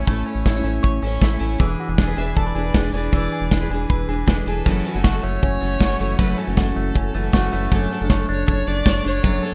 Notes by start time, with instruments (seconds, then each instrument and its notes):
Already playing: clean electric guitar C#4 E4 C#5
0.07 analog synth bass A1, steel-string acoustic guitar A3 C#4 E4, violin A4, kick, closed hi-hat
0.11 steel-string acoustic guitar C#5
0.26 clean electric guitar C#4, violin C#5, open hi-hat
0.35 analog synth bass A1
0.46 analog synth bass A1, clean electric guitar E4, kick, snare, closed hi-hat
0.56 steel-string acoustic guitar C#4 E4 C#5
0.64 analog synth bass A1, steel-string acoustic guitar A3 C#4 E4, open hi-hat
0.68 steel-string acoustic guitar C#5
0.83 analog synth bass A1, clean electric guitar C#5, kick, closed hi-hat
1.02 analog synth bass A1, steel-string acoustic guitar A3 C#4 E4, open hi-hat
1.07 steel-string acoustic guitar C#5
1.21 analog synth bass A1, steel-string acoustic guitar A3 C#4 E4 C#5, kick, snare, closed hi-hat
1.39 analog synth bass A1, steel-string acoustic guitar A3 C#4 E4, open hi-hat
1.43 steel-string acoustic guitar C#5
1.59 analog synth bass E1, steel-string acoustic guitar E3 D4 G#4 B4, kick, closed hi-hat
1.80 clean electric guitar F#4, open hi-hat
1.88 analog synth bass E1, clean electric guitar G#4
1.98 analog synth bass E1, clean electric guitar D4, violin G#4, kick, snare, closed hi-hat
2.07 steel-string acoustic guitar D4 G#4 B4
2.17 analog synth bass E1, steel-string acoustic guitar E3 D4 G#4 B4, violin E5, open hi-hat
2.35 analog synth bass E1, clean electric guitar A4, violin D5, kick, closed hi-hat
2.46 clean electric guitar B4
2.55 analog synth bass E1, steel-string acoustic guitar E3 D4 G#4 B4, open hi-hat
2.74 analog synth bass E1, steel-string acoustic guitar E3 D4 G#4, kick, snare, closed hi-hat
2.78 steel-string acoustic guitar B4
2.93 analog synth bass E1, steel-string acoustic guitar E3 D4 G#4, violin D5, open hi-hat
2.97 steel-string acoustic guitar B4
3.12 analog synth bass E1, steel-string acoustic guitar E3 D4 G#4, kick, closed hi-hat
3.17 steel-string acoustic guitar B4
3.32 clean electric guitar G#4, open hi-hat
3.41 analog synth bass E1
3.51 analog synth bass E1, clean electric guitar D4, kick, snare, closed hi-hat
3.61 steel-string acoustic guitar D4 G#4 B4
3.70 analog synth bass E1, steel-string acoustic guitar E3 D4 G#4, open hi-hat
3.75 steel-string acoustic guitar B4
3.89 analog synth bass E1, clean electric guitar B4, kick, closed hi-hat
4.08 analog synth bass E1, steel-string acoustic guitar E3 D4 G#4, open hi-hat
4.13 steel-string acoustic guitar B4
4.26 analog synth bass E1, steel-string acoustic guitar E3 D4 G#4 B4, kick, snare, closed hi-hat
4.46 analog synth bass E1, steel-string acoustic guitar E3 D4 G#4 B4, violin A4, open hi-hat
4.66 analog synth bass F#1, steel-string acoustic guitar F#2 E3 F#3 A3 C#4 F#4, kick, crash
4.85 steel-string acoustic guitar E3 A3 C#4 F#4, open hi-hat
4.94 analog synth bass F#1, steel-string acoustic guitar E3 A3 C#4 F#4
5.04 analog synth bass F#1, clean electric guitar F#4, kick, snare, closed hi-hat
5.23 analog synth bass F#1, clean electric guitar A3, violin C#5, open hi-hat
5.42 analog synth bass F#1, clean electric guitar C#4, kick, closed hi-hat
5.60 analog synth bass F#1, steel-string acoustic guitar E3 A3 C#4 F#4, open hi-hat
5.80 analog synth bass F#1, steel-string acoustic guitar E3 A3 C#4 F#4, kick, snare, closed hi-hat
5.99 analog synth bass F#1, steel-string acoustic guitar E3 A3 C#4 F#4, open hi-hat
6.19 analog synth bass F#1, steel-string acoustic guitar F#2 E3 F#3 A3 C#4 F#4, violin B4, kick, closed hi-hat
6.37 steel-string acoustic guitar E3 A3 C#4 F#4, violin A4, open hi-hat
6.47 analog synth bass F#1, steel-string acoustic guitar E3 A3 C#4 F#4
6.57 analog synth bass F#1, clean electric guitar F#4, kick, snare, closed hi-hat
6.76 analog synth bass F#1, clean electric guitar A3, open hi-hat
6.95 analog synth bass F#1, clean electric guitar C#4, kick, closed hi-hat
7.14 analog synth bass F#1, steel-string acoustic guitar E3 A3 C#4 F#4, open hi-hat
7.32 analog synth bass F#1, steel-string acoustic guitar E3 A3 C#4 F#4, kick, snare, closed hi-hat
7.51 analog synth bass F#1, steel-string acoustic guitar E3 A3 C#4 F#4, violin A4, open hi-hat
7.72 analog synth bass F#1, steel-string acoustic guitar F#2 F#3 A3 D4 A4 C#5, kick, closed hi-hat
7.91 steel-string acoustic guitar A3 D4 A4 C#5, open hi-hat
8.01 analog synth bass F#1, steel-string acoustic guitar A3 D4 A4 C#5
8.10 analog synth bass F#1, clean electric guitar C#5, kick, snare, closed hi-hat
8.29 analog synth bass F#1, clean electric guitar D4, violin C#5, open hi-hat
8.47 analog synth bass F#1, clean electric guitar A4, violin C#5, kick, closed hi-hat
8.67 analog synth bass F#1, steel-string acoustic guitar A3 D4 A4 C#5, violin D5, open hi-hat
8.85 analog synth bass F#1, steel-string acoustic guitar A3 D4 A4 C#5, kick, snare, closed hi-hat
9.04 analog synth bass F#1, steel-string acoustic guitar A3 D4 A4 C#5, violin C#5, open hi-hat
9.23 analog synth bass F#1, steel-string acoustic guitar F#2 F#3 A3 D4 A4 C#5, kick, closed hi-hat
9.43 steel-string acoustic guitar A3 D4 A4 C#5, open hi-hat